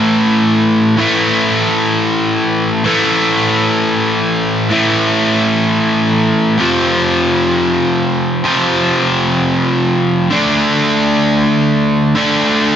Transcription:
0, 0, Header, 1, 2, 480
1, 0, Start_track
1, 0, Key_signature, 0, "minor"
1, 0, Tempo, 500000
1, 12249, End_track
2, 0, Start_track
2, 0, Title_t, "Overdriven electric guitar"
2, 0, Program_c, 0, 29
2, 0, Note_on_c, 0, 45, 85
2, 0, Note_on_c, 0, 52, 77
2, 0, Note_on_c, 0, 57, 96
2, 932, Note_off_c, 0, 45, 0
2, 936, Note_on_c, 0, 45, 83
2, 947, Note_off_c, 0, 52, 0
2, 951, Note_on_c, 0, 52, 86
2, 959, Note_off_c, 0, 57, 0
2, 962, Note_on_c, 0, 57, 89
2, 2723, Note_off_c, 0, 45, 0
2, 2727, Note_on_c, 0, 45, 86
2, 2736, Note_off_c, 0, 52, 0
2, 2740, Note_on_c, 0, 52, 98
2, 2749, Note_off_c, 0, 57, 0
2, 2753, Note_on_c, 0, 57, 94
2, 4498, Note_off_c, 0, 45, 0
2, 4510, Note_on_c, 0, 45, 73
2, 4513, Note_off_c, 0, 52, 0
2, 4524, Note_on_c, 0, 52, 88
2, 4532, Note_off_c, 0, 57, 0
2, 4536, Note_on_c, 0, 57, 92
2, 6298, Note_off_c, 0, 45, 0
2, 6306, Note_off_c, 0, 52, 0
2, 6314, Note_on_c, 0, 41, 88
2, 6329, Note_on_c, 0, 48, 80
2, 6340, Note_on_c, 0, 53, 100
2, 7896, Note_off_c, 0, 57, 0
2, 8091, Note_off_c, 0, 41, 0
2, 8102, Note_on_c, 0, 41, 91
2, 8105, Note_off_c, 0, 48, 0
2, 8115, Note_on_c, 0, 48, 81
2, 8123, Note_off_c, 0, 53, 0
2, 8127, Note_on_c, 0, 53, 91
2, 9884, Note_off_c, 0, 48, 0
2, 9888, Note_on_c, 0, 50, 87
2, 9889, Note_off_c, 0, 41, 0
2, 9897, Note_off_c, 0, 53, 0
2, 9901, Note_on_c, 0, 57, 87
2, 9910, Note_on_c, 0, 62, 92
2, 11656, Note_off_c, 0, 50, 0
2, 11667, Note_on_c, 0, 50, 84
2, 11676, Note_off_c, 0, 57, 0
2, 11680, Note_on_c, 0, 57, 94
2, 11681, Note_off_c, 0, 62, 0
2, 11692, Note_on_c, 0, 62, 100
2, 12249, Note_off_c, 0, 50, 0
2, 12249, Note_off_c, 0, 57, 0
2, 12249, Note_off_c, 0, 62, 0
2, 12249, End_track
0, 0, End_of_file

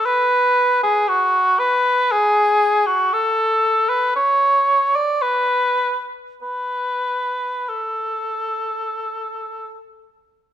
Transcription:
0, 0, Header, 1, 2, 480
1, 0, Start_track
1, 0, Tempo, 1025641
1, 23, Time_signature, 3, 2, 24, 8
1, 1942, Tempo, 1063830
1, 2422, Tempo, 1185771
1, 2902, Tempo, 1298701
1, 3862, Tempo, 1604278
1, 4322, End_track
2, 0, Start_track
2, 0, Title_t, "Cor anglais"
2, 0, Program_c, 0, 69
2, 26, Note_on_c, 0, 71, 105
2, 387, Note_off_c, 0, 71, 0
2, 389, Note_on_c, 0, 68, 91
2, 507, Note_on_c, 0, 66, 94
2, 514, Note_off_c, 0, 68, 0
2, 745, Note_on_c, 0, 71, 101
2, 752, Note_off_c, 0, 66, 0
2, 989, Note_on_c, 0, 68, 96
2, 996, Note_off_c, 0, 71, 0
2, 1341, Note_on_c, 0, 66, 83
2, 1348, Note_off_c, 0, 68, 0
2, 1465, Note_on_c, 0, 69, 97
2, 1472, Note_off_c, 0, 66, 0
2, 1822, Note_on_c, 0, 71, 83
2, 1829, Note_off_c, 0, 69, 0
2, 1943, Note_off_c, 0, 71, 0
2, 1946, Note_on_c, 0, 73, 97
2, 2306, Note_on_c, 0, 74, 84
2, 2313, Note_off_c, 0, 73, 0
2, 2425, Note_on_c, 0, 71, 85
2, 2431, Note_off_c, 0, 74, 0
2, 2772, Note_off_c, 0, 71, 0
2, 2910, Note_on_c, 0, 71, 64
2, 3380, Note_on_c, 0, 69, 49
2, 3386, Note_off_c, 0, 71, 0
2, 4101, Note_off_c, 0, 69, 0
2, 4322, End_track
0, 0, End_of_file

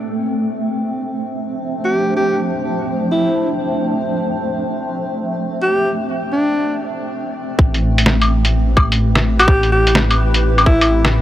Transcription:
0, 0, Header, 1, 5, 480
1, 0, Start_track
1, 0, Key_signature, 0, "minor"
1, 0, Tempo, 472441
1, 33, Time_signature, 4, 2, 24, 8
1, 11396, End_track
2, 0, Start_track
2, 0, Title_t, "Alto saxophone"
2, 0, Program_c, 0, 65
2, 1875, Note_on_c, 0, 67, 85
2, 2179, Note_off_c, 0, 67, 0
2, 2199, Note_on_c, 0, 67, 81
2, 2452, Note_off_c, 0, 67, 0
2, 3168, Note_on_c, 0, 64, 81
2, 3558, Note_off_c, 0, 64, 0
2, 5714, Note_on_c, 0, 67, 85
2, 6018, Note_off_c, 0, 67, 0
2, 6423, Note_on_c, 0, 62, 84
2, 6907, Note_off_c, 0, 62, 0
2, 9545, Note_on_c, 0, 67, 94
2, 9853, Note_off_c, 0, 67, 0
2, 9876, Note_on_c, 0, 67, 92
2, 10130, Note_off_c, 0, 67, 0
2, 10836, Note_on_c, 0, 64, 95
2, 11232, Note_off_c, 0, 64, 0
2, 11396, End_track
3, 0, Start_track
3, 0, Title_t, "Ambient pad"
3, 0, Program_c, 1, 92
3, 0, Note_on_c, 1, 57, 88
3, 0, Note_on_c, 1, 60, 75
3, 0, Note_on_c, 1, 69, 81
3, 243, Note_on_c, 1, 62, 70
3, 310, Note_on_c, 1, 72, 78
3, 373, Note_on_c, 1, 53, 84
3, 1249, Note_off_c, 1, 69, 0
3, 7710, Note_off_c, 1, 72, 0
3, 7715, Note_off_c, 1, 53, 0
3, 7966, Note_on_c, 1, 64, 93
3, 8036, Note_on_c, 1, 71, 89
3, 8125, Note_on_c, 1, 67, 94
3, 8406, Note_off_c, 1, 62, 0
3, 11396, Note_off_c, 1, 57, 0
3, 11396, Note_off_c, 1, 60, 0
3, 11396, Note_off_c, 1, 64, 0
3, 11396, Note_off_c, 1, 67, 0
3, 11396, Note_off_c, 1, 71, 0
3, 11396, End_track
4, 0, Start_track
4, 0, Title_t, "Detuned saw bass"
4, 0, Program_c, 2, 39
4, 7709, Note_on_c, 2, 33, 91
4, 11396, Note_off_c, 2, 33, 0
4, 11396, End_track
5, 0, Start_track
5, 0, Title_t, "Drums"
5, 7709, Note_on_c, 9, 36, 118
5, 7810, Note_off_c, 9, 36, 0
5, 7868, Note_on_c, 9, 42, 33
5, 7969, Note_off_c, 9, 42, 0
5, 8109, Note_on_c, 9, 42, 60
5, 8190, Note_on_c, 9, 38, 108
5, 8211, Note_off_c, 9, 42, 0
5, 8291, Note_off_c, 9, 38, 0
5, 8347, Note_on_c, 9, 42, 46
5, 8347, Note_on_c, 9, 75, 39
5, 8449, Note_off_c, 9, 42, 0
5, 8449, Note_off_c, 9, 75, 0
5, 8583, Note_on_c, 9, 42, 57
5, 8685, Note_off_c, 9, 42, 0
5, 8907, Note_on_c, 9, 75, 56
5, 8909, Note_on_c, 9, 36, 100
5, 9009, Note_off_c, 9, 75, 0
5, 9010, Note_off_c, 9, 36, 0
5, 9062, Note_on_c, 9, 42, 56
5, 9164, Note_off_c, 9, 42, 0
5, 9301, Note_on_c, 9, 38, 108
5, 9403, Note_off_c, 9, 38, 0
5, 9545, Note_on_c, 9, 42, 57
5, 9545, Note_on_c, 9, 75, 68
5, 9630, Note_on_c, 9, 36, 123
5, 9647, Note_off_c, 9, 42, 0
5, 9647, Note_off_c, 9, 75, 0
5, 9731, Note_off_c, 9, 36, 0
5, 9786, Note_on_c, 9, 42, 33
5, 9887, Note_off_c, 9, 42, 0
5, 10026, Note_on_c, 9, 42, 59
5, 10110, Note_on_c, 9, 38, 117
5, 10128, Note_off_c, 9, 42, 0
5, 10212, Note_off_c, 9, 38, 0
5, 10267, Note_on_c, 9, 42, 48
5, 10267, Note_on_c, 9, 75, 37
5, 10369, Note_off_c, 9, 42, 0
5, 10369, Note_off_c, 9, 75, 0
5, 10509, Note_on_c, 9, 42, 57
5, 10610, Note_off_c, 9, 42, 0
5, 10749, Note_on_c, 9, 42, 33
5, 10749, Note_on_c, 9, 75, 66
5, 10834, Note_on_c, 9, 36, 107
5, 10851, Note_off_c, 9, 42, 0
5, 10851, Note_off_c, 9, 75, 0
5, 10935, Note_off_c, 9, 36, 0
5, 10987, Note_on_c, 9, 42, 56
5, 10987, Note_on_c, 9, 75, 36
5, 11088, Note_off_c, 9, 42, 0
5, 11088, Note_off_c, 9, 75, 0
5, 11223, Note_on_c, 9, 38, 109
5, 11325, Note_off_c, 9, 38, 0
5, 11396, End_track
0, 0, End_of_file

